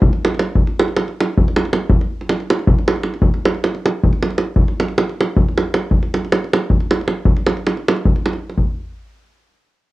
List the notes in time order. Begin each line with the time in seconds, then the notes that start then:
0.02 davul low
0.13 davul high
0.25 davul high
0.34 davul high
0.39 davul high
0.55 davul low
0.67 davul high
0.79 davul high
0.88 davul high
0.97 davul high
1.08 davul high
1.21 davul high
1.38 davul low
1.48 davul high
1.56 davul high
1.65 davul high
1.73 davul high
1.90 davul low
2.01 davul high
2.21 davul high
2.30 davul high
2.40 davul high
2.50 davul high
2.59 davul high
2.68 davul low
2.79 davul high
2.88 davul high
2.96 davul high
3.04 davul high
3.14 davul high
3.22 davul low
3.34 davul high
3.45 davul high
3.55 davul high
3.64 davul high
3.75 davul high
3.86 davul high
4.04 davul low
4.13 davul high
4.23 davul high
4.30 davul high
4.38 davul high
4.56 davul low
4.68 davul high
4.80 davul high
4.88 davul high
4.98 davul high
5.09 davul high
5.21 davul high
5.37 davul low
5.49 davul high
5.58 davul high
5.74 davul high
5.91 davul low
6.03 davul high
6.14 davul high
6.25 davul high
6.32 davul high
6.44 davul high
6.54 davul high
6.70 davul low
6.81 davul high
6.91 davul high
7.01 davul high
7.08 davul high
7.25 davul low
7.37 davul high
7.47 davul high
7.57 davul high
7.67 davul high
7.77 davul high
7.88 davul high
7.96 davul high
8.05 davul low
8.16 davul high
8.26 davul high
8.33 davul high
8.49 davul high
8.57 davul low